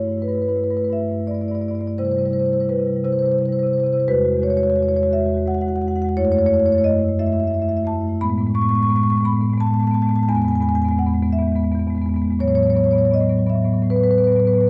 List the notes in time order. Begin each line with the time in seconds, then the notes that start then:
Already playing: G2 C#5
0.02 A3 E4
0.07 G2 E4
0.12 A3
0.17 G2 A3 E4
0.22 E4 B4
0.28 G2 A3 B4
0.32 E4 B4
0.38 G2 A3 E4
0.42 B4
0.46 G2 A3 E4 B4
0.56 A3 E4 B4
0.60 G2 A3 B4
0.64 E4
0.70 G2 A3 E4 B4
0.77 G2 E4 B4
0.81 A3 B4
0.88 G2 A3 E4
0.93 E4 E5
0.99 G2 A3
1.04 E4
1.08 G2 A3 E4
1.17 G2 A3 E4
1.26 A3 E4 D5
1.31 G2 E4 D5
1.36 A3
1.41 G2 A3 E4 D5
1.48 G2 A3 E4 D5
1.55 E4 D5
1.61 G2 A3 D5
1.65 E4 D5
1.70 G2 A3 E4
1.75 D5
1.79 G2 A3 E4 D5
1.86 A3 E4 D5
1.98 C3 G3 E4 C5
2.05 G3 E4 C5
2.10 C3 C5
2.15 G3 E4 C5
2.19 C3 E4
2.25 G3 E4 C5
2.31 C3 G3 C5
2.37 E4 C5
2.41 C3 G3
2.45 E4 C5
2.50 C3 G3 E4 C5
2.60 C3 G3 E4 C5
2.69 C3 G3 E4 B4
2.77 C3 G3 E4
2.85 G3 E4
2.90 C3 E4
2.96 G3
3.04 C3 G3 E4 C5
3.12 C3 G3 E4 C5
3.19 C3 G3 E4 C5
3.26 E4 C5
3.31 C3 G3 E4 C5
3.39 C3 G3 E4 C5
3.46 G3 E4 C5
3.52 C3 C5
3.56 G3 E4 C5
3.63 C3 E4 C5
3.68 G3 E4
3.73 C3 C5
3.78 G3 E4 C5
3.84 C3 E4 C5
3.88 G3 E4
3.93 C3 C5
3.97 G3 E4 C5
4.08 E2 G#3 F#4 B4
4.16 E2 G#3 F#4
4.24 E2 G#3 F#4
4.32 G#3 F#4
4.37 E2 F#4
4.42 G#3 C#5
4.48 E2 G#3 F#4 C#5
4.56 E2 G#3 F#4 C#5
4.63 F#4 C#5
4.67 E2 G#3 F#4 C#5
4.76 E2 G#3 F#4 C#5
4.83 G#3 C#5
4.87 E2 F#4 C#5
4.94 E2 G#3 F#4 C#5
5.03 G#3 F#4 C#5
5.07 E2 F#4
5.11 G#3 E5
5.17 E2 G#3 F#4
5.26 E2 G#3 F#4
5.34 E2 G#3 F#4
5.42 G#3 F#4
5.47 E2 F#4 F#5
5.54 E2 G#3 F#5
5.58 F#4 F#5
5.62 G#3 F#4
5.67 E2 G#3 F#5
5.75 E2 G#3 F#4 F#5
5.81 E2 F#4 F#5
5.87 G#3 F#4 F#5
5.95 E2 G#3 F#4 F#5
6.02 E2 G#3 F#5
6.06 F#4 F#5
6.17 F#2 A3 E4 C#5
6.25 F#2 A3 E4 C#5
6.32 A3 E4 C#5
6.37 F#2 C#5
6.41 A3 E4
6.46 F#2 A3 E4 C#5
6.54 F#2 C#5
6.58 A3 E4 C#5
6.66 F#2 A3 E4 C#5
6.72 F#2 A3 E4 C#5
6.78 E4 C#5
6.83 F#2 A3 D#5
6.89 A3 E4
6.96 F#2 A3 E4
7.05 F#2 A3 E4
7.19 F#2 A3 E4 E5
7.26 F#2 A3 E4 E5
7.32 A3 E4 E5
7.40 F#2 E4 E5
7.44 A3 E4 E5
7.50 F#2 A3
7.54 E4 E5
7.60 F#2 A3 E4 E5
7.68 F#2 A3 E4 E5
7.76 A3 E4 E5
7.82 F#2 A3 E4
7.87 A5
7.93 F#2 A3 E4
8.00 F#2 A3 E4
8.07 A3 E4
8.14 F#2 E4
8.21 A2 G#3 B3 B5
8.29 A2 G#3 B3
8.37 A2 G#3 B3
8.46 A2 G#3 B3
8.54 G#3 B3 C#6
8.60 A2 G#3 B3 C#6
8.69 A2 G#3 B3 C#6
8.75 G#3 C#6
8.80 A2 B3 C#6
8.87 A2 G#3 B3 C#6
8.95 G#3 B3 C#6
9.01 A2 G#3 C#6
9.06 B3 C#6
9.12 A2 G#3 B3
9.17 G#3 C#6
9.22 A2 B3 B5
9.29 A2 G#3 B3
9.36 G#3
9.41 A2 B3
9.45 G#3
9.50 A2 G#3 B3
9.57 B3 A5
9.62 A2 G#3 B3
9.66 A5
9.71 A2 G#3 B3 A5
9.79 G#3 B3 A5
9.84 A2 G#3 A5
9.91 A2 G#3 B3 A5
9.99 G#3 B3 A5
10.05 A2 B3
10.09 G#3 A5
10.14 A2 B3 A5
10.19 G#3 A5
10.28 E2 G#3 B3 G#5
10.35 G#3 B3 G#5
10.40 E2 B3 G#5
10.45 G#3 G#5
10.51 E2 G#3 B3
10.55 G#5
10.60 E2 G#3 B3 G#5
10.68 G#3 B3 G#5
10.74 E2 G#3 B3 G#5
10.82 E2 G#3 B3 G#5
10.89 G#3 B3 G#5
10.97 E2 G#3 B3 F#5
11.06 E2 G#3 B3
11.14 G#3 B3
11.20 E2 G#3 B3
11.30 E2 G#3 B3 E5
11.39 E2 G#3 B3
11.47 G#3 B3
11.53 E2 G#3 B3
11.64 E2 G#3 B3
11.72 E2 G#3 B3
11.79 G#3 B3
11.87 E2 G#3 B3
11.95 E2 G#3 B3
12.02 G#3 B3
12.07 E2 B3
12.14 E2 G#3 B3
12.22 G#3 B3
12.28 E2 G#3
12.32 B3
12.40 A2 F#3 B3 C#5
12.48 A2 F#3 B3 C#5
12.55 A2 F#3 B3 C#5
12.63 A2 F#3 B3 C#5
12.70 F#3 C#5
12.75 A2 B3 C#5
12.81 F#3 B3 C#5
12.85 A2 F#3
12.91 B3 C#5
12.95 A2 F#3 C#5
13.01 A2 B3
13.05 F#3 C#5
13.10 A2 F#3 B3 D#5
13.20 A2 F#3 B3
13.29 A2 F#3 B3
13.38 A2 F#3 B3
13.46 A2 F#3 B3 E5
13.53 A2 F#3 B3
13.62 A2 F#3 B3
13.69 F#3
13.73 A2 B3
13.78 F#3 B3
13.83 A2 F#3
13.90 A2 F#3 B3 B4
13.96 B3 B4
14.01 A2 F#3 B4
14.09 A2 F#3 B3 B4
14.18 A2 F#3 B3 B4
14.24 F#3 B3 B4
14.29 A2 B4
14.36 A2 F#3 B3
14.40 B4
14.44 A2 F#3 B3 B4
14.52 F#3 B3 B4
14.58 A2 F#3 B4
14.63 B3